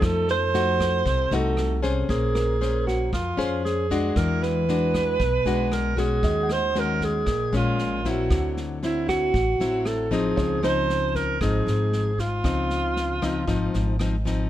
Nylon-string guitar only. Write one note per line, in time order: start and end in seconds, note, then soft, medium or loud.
0.00 1.02 F3 medium
0.00 0.49 A3 medium
0.00 0.50 D#4 medium
0.54 1.06 A3 medium
0.54 1.06 D#4 medium
0.54 1.06 F#4 medium
1.06 2.07 C3 soft
1.32 1.79 A3 medium
1.32 1.80 D#4 medium
1.32 1.80 F#4 medium
1.82 2.56 C#4 medium
1.82 2.57 G#4 medium
1.82 2.57 C5 medium
2.10 3.11 A#3 medium
2.61 3.13 C#4 medium
2.61 3.13 G#4 medium
2.61 3.13 C5 medium
3.12 4.14 F3 soft
3.37 3.86 C#4 medium
3.37 3.86 G#4 medium
3.37 3.86 C5 medium
3.91 4.64 G#3 medium
3.91 4.64 D4 medium
3.91 4.64 F#4 medium
4.17 5.17 E3 medium
4.69 5.20 G#3 medium
4.69 5.20 D4 medium
4.69 5.21 F#4 medium
5.20 6.21 B2 soft
5.46 5.93 G#3 medium
5.46 5.94 D4 medium
5.46 5.94 F#4 medium
5.97 6.71 G#3 medium
5.97 6.71 C#4 medium
5.97 6.71 F#4 medium
6.24 7.25 D#3 soft
6.75 7.27 G#3 soft
6.75 7.27 C#4 medium
6.75 7.27 F#4 medium
7.27 8.28 A#2 medium
7.53 8.00 G#3 medium
7.53 8.01 C#4 medium
8.05 8.79 F#3 medium
8.05 8.79 C4 medium
8.05 8.79 E4 medium
8.32 9.32 D3 medium
8.83 9.34 F#3 medium
8.83 9.34 C4 medium
8.83 9.35 E4 medium
9.34 10.35 A2 soft
9.61 10.08 F#3 medium
9.61 10.08 C4 medium
9.61 10.08 E4 medium
10.11 10.62 F3 medium
10.11 10.62 C4 medium
10.11 10.63 D#4 medium
10.36 11.38 C#3 medium
10.63 11.37 F3 medium
10.63 11.37 C4 medium
10.63 11.37 D#4 medium
11.42 12.43 G#2 medium
11.42 12.11 F3 soft
11.42 12.11 C4 soft
11.42 12.11 D#4 medium
12.44 13.45 C#3 soft
12.44 13.18 F3 medium
12.44 13.18 C4 medium
12.44 13.18 D#4 medium
13.22 13.44 F3 medium
13.22 13.44 C4 medium
13.22 13.44 D#4 medium
13.47 14.48 G#2 medium
13.47 13.95 F3 medium
13.47 13.95 C4 soft
13.47 13.96 D#4 medium
14.00 14.15 F3 medium
14.00 14.16 C4 medium
14.00 14.16 D#4 medium
14.26 14.50 F3 medium
14.26 14.50 C4 medium
14.26 14.50 D#4 medium